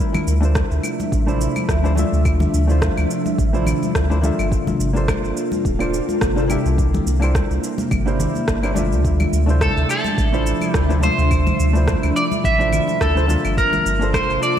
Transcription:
Already playing: hollow-body jazz guitar A3 D4 E4 F4 E5
0.00 ambient pad C3 F3 D4 E5
0.14 high conga, low conga, claves, shaker
0.27 sub bass D2, shaker
0.41 hollow-body jazz guitar A3 D4 E4 F4, shaker
0.45 hollow-body jazz guitar C5
0.55 kick, cross-stick, high conga, shaker
0.71 sub bass D2, shaker
0.83 claves, shaker
1.00 high conga, shaker
1.12 sub bass A1, kick, shaker
1.26 hollow-body jazz guitar A3 D4 E4 F4 C5, shaker
1.41 shaker
1.56 high conga, claves, shaker
1.69 sub bass D2, kick, cross-stick, shaker
1.83 hollow-body jazz guitar A3 D4 E4 F4 C5, shaker
1.95 hollow-body jazz guitar A3 D4 F4, high conga, shaker
1.99 hollow-body jazz guitar E5
2.13 sub bass D2, shaker
2.25 kick, claves, shaker
2.40 high conga, low conga, shaker
2.54 sub bass D2, shaker
2.67 hollow-body jazz guitar A3 D4 E4 F4, shaker
2.71 hollow-body jazz guitar C5
2.82 kick, cross-stick, high conga, shaker
2.97 sub bass D2, claves, shaker
3.11 shaker
3.26 high conga, shaker
3.38 sub bass A1, kick, shaker
3.53 hollow-body jazz guitar A3 D4 E4 F4 C5, shaker
3.66 low conga, claves, shaker
3.83 high conga, shaker
3.95 sub bass D2, kick, cross-stick, shaker
4.10 hollow-body jazz guitar A3 D4 E4 F4 C5, shaker
4.21 hollow-body jazz guitar A#3 D4 F4 A4, high conga, low conga, shaker
4.25 hollow-body jazz guitar E5
4.39 sub bass G1, claves, shaker
4.51 ambient pad A#3 F4 A4, kick, shaker
4.67 high conga, low conga, shaker
4.80 sub bass G1, shaker
4.93 hollow-body jazz guitar A#3 D4 F4 A4, shaker
4.97 hollow-body jazz guitar C5
5.08 kick, cross-stick, high conga, claves, shaker
5.24 sub bass G1, shaker
5.37 shaker
5.52 high conga, shaker
5.65 sub bass D1, kick, shaker
5.79 hollow-body jazz guitar A#3 D4 F4 A4 C5, claves, shaker
5.94 shaker
6.09 high conga, shaker
6.21 sub bass G1, kick, cross-stick, shaker
6.36 hollow-body jazz guitar A#3 D4 F4 A4 C5, shaker
6.47 hollow-body jazz guitar A#3 D4 E4 G4, high conga, claves, shaker
6.51 hollow-body jazz guitar E5
6.65 sub bass C2, shaker
6.77 ambient pad G3 A#3 E5, kick, shaker
6.94 high conga, low conga, shaker
7.06 sub bass C2, shaker
7.20 hollow-body jazz guitar A#3 D4 E4 G4, claves, shaker
7.24 hollow-body jazz guitar C5
7.35 kick, cross-stick, high conga, shaker
7.50 sub bass C2, shaker
7.64 shaker
7.78 high conga, shaker
7.91 sub bass G1, kick, claves, shaker
8.06 hollow-body jazz guitar A#3 D4 E4 G4 C5, shaker
8.20 low conga, shaker
8.35 high conga, shaker
8.48 sub bass G1, kick, cross-stick, shaker
8.63 hollow-body jazz guitar A#3 D4 E4 G4 C5, claves, shaker
8.74 hollow-body jazz guitar A3 D4 F4, high conga, low conga, shaker
8.78 hollow-body jazz guitar E5
8.92 sub bass D2, shaker
9.04 ambient pad F3 D4, kick, shaker
9.20 high conga, low conga, claves, shaker
9.33 sub bass D2, shaker
9.46 hollow-body jazz guitar A3 D4 E4 F4, shaker
9.50 hollow-body jazz guitar C5
9.61 clean electric guitar A4, kick, cross-stick, high conga, shaker
9.77 sub bass D2, shaker
9.89 clean electric guitar A4, claves, shaker
10.04 high conga, shaker
10.18 sub bass A1, kick, shaker
10.32 hollow-body jazz guitar A3 D4 E4 F4 C5, shaker
10.46 shaker
10.61 high conga, claves, shaker
10.71 sub bass D2, clean electric guitar G4, kick, cross-stick
10.75 shaker
10.89 hollow-body jazz guitar A3 D4 E4 F4 C5, shaker
11.00 hollow-body jazz guitar A3 D4 F4, clean electric guitar C5, high conga, shaker
11.05 hollow-body jazz guitar E5
11.18 sub bass D2, shaker
11.31 kick, claves, shaker
11.47 high conga, low conga, shaker
11.59 sub bass D2, shaker
11.73 hollow-body jazz guitar A3 D4 E4 F4, shaker
11.77 hollow-body jazz guitar C5
11.87 kick, cross-stick, high conga, shaker
12.03 sub bass D2, claves, shaker
12.16 clean electric guitar D5, shaker
12.32 high conga, shaker
12.44 sub bass A1, clean electric guitar E5, kick, shaker
12.59 hollow-body jazz guitar A3 D4 E4 F4 C5, shaker
12.72 low conga, claves, shaker
12.88 high conga, shaker
13.01 sub bass D2, clean electric guitar A4, kick, cross-stick, shaker
13.15 hollow-body jazz guitar A3 D4 E4 F4 C5, shaker
13.27 hollow-body jazz guitar A#3 D4 F4 A5, high conga, low conga, shaker
13.31 hollow-body jazz guitar E5
13.45 sub bass G1, claves, shaker
13.57 ambient pad C3 A#3 F4 A5, clean electric guitar A#4, kick, shaker
13.73 high conga, low conga, shaker
13.86 sub bass G1, shaker
13.99 hollow-body jazz guitar A#3 D4 F4 A4, shaker
14.04 hollow-body jazz guitar C5
14.14 clean electric guitar C5, kick, cross-stick, high conga, claves, shaker
14.29 sub bass G1, shaker
14.43 clean electric guitar D5, shaker

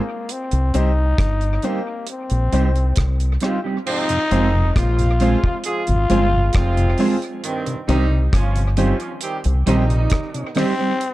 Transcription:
Already playing: trombone A#3
0.29 trombone C4, closed hi-hat
0.51 fingered electric bass C2, closed hi-hat
0.74 fingered electric bass C2, clean electric guitar G3 C4 D#4 G4, grand piano C4 D#4 G4 C5, trombone D#4, closed hi-hat
1.18 fingered electric bass G1, kick, cross-stick, closed hi-hat
1.41 closed hi-hat
1.62 clean electric guitar G3 C4 D#4 G4, trombone A#3, grand piano C4 D#4 G4 C5, closed hi-hat
2.07 trombone C4, closed hi-hat
2.30 fingered electric bass A#1, closed hi-hat
2.52 fingered electric bass C2, clean electric guitar G3 C4 D#4 G4, grand piano C4 D#4 G4 C5, closed hi-hat
2.76 closed hi-hat
2.96 fingered electric bass C2, kick, cross-stick, closed hi-hat
3.20 closed hi-hat
3.40 clean electric guitar G3 C4 D#4 G4, grand piano C4 D#4 G4 C5, cross-stick, closed hi-hat
3.45 trombone F4
3.64 clean electric guitar G3 C4 D#4 G4
3.86 horn section G#2 C3 F3 C4, trombone D#4, crash
4.09 tonewheel organ F2 C3, closed hi-hat
4.31 fingered electric bass F1, horn section D#3 C4 D#4, tonewheel organ F3 G#3 C4, clean electric guitar G#3 C4 F4 G#4, grand piano C4 F4 G#4 C5, closed hi-hat
4.54 tonewheel organ F2 C3
4.76 fingered electric bass A#1, horn section C3 F3 G#3 F4, trombone F4, kick, cross-stick, closed hi-hat
4.99 tonewheel organ F2 C3, closed hi-hat
5.20 horn section C3 F3 G#3 F4, tonewheel organ F3 G#3 C4, clean electric guitar G#3 C4 F4 G#4, grand piano C4 F4 G#4 C5, closed hi-hat
5.44 kick
5.64 horn section F3 G#3 C4 G#4, closed hi-hat
5.68 trombone F4
5.87 fingered electric bass G#1, tonewheel organ F2 C3, closed hi-hat
6.09 fingered electric bass G1, horn section C3 F3 G#3 F4, tonewheel organ F3 G#3 C4, clean electric guitar G#3 C4 F4 G#4, grand piano C4 F4 G#4 C5, closed hi-hat
6.32 tonewheel organ F2 C3
6.53 fingered electric bass F1, horn section C3 F3 G#3 F4, trombone C4, kick, cross-stick, closed hi-hat
6.77 tonewheel organ F2 C3, closed hi-hat
6.98 tonewheel organ F3 G#3 C4, clean electric guitar G#3 C4 F4 G#4, grand piano C4 F4 G#4 C5, open hi-hat
7.22 closed hi-hat
7.43 horn section G2 D#3 C4, closed hi-hat
7.66 tonewheel organ C3, closed hi-hat
7.88 fingered electric bass C2, horn section C3 D#3 G3 D#4, tonewheel organ D#3 G3 C4, clean electric guitar G3 C4 D#4 G4, grand piano C4 D#4 G4 C5, closed hi-hat
8.11 tonewheel organ C3
8.32 fingered electric bass G1, horn section F3 C#4 F4, kick, cross-stick, closed hi-hat
8.56 tonewheel organ C3, grand piano G4 C5, closed hi-hat
8.77 tonewheel organ D#3 G3 C4, horn section F3 C#4 F4, clean electric guitar G3 C4 D#4 G4, grand piano C4 D#4 G4 C5, closed hi-hat
9.00 closed hi-hat
9.21 horn section D#3 G3 C4 G4, closed hi-hat
9.44 fingered electric bass C2, tonewheel organ C3, grand piano G4 C5, closed hi-hat
9.66 fingered electric bass A#1, horn section C3 D#3 G3 D#4, tonewheel organ D#3 G3 C4, clean electric guitar G3 C4 D#4 G4, grand piano C4 D#4 G4 C5, closed hi-hat
9.89 tonewheel organ C3, closed hi-hat
10.10 kick, cross-stick, closed hi-hat
10.34 tonewheel organ C3, closed hi-hat
10.55 tonewheel organ D#3 G3 C4, clean electric guitar G3 C4 D#4 G4, grand piano C4 D#4 G4 C5, trombone C4, cross-stick, open hi-hat
10.79 clean electric guitar G3 C4 D#4 G4, grand piano G4 C5
11.01 closed hi-hat

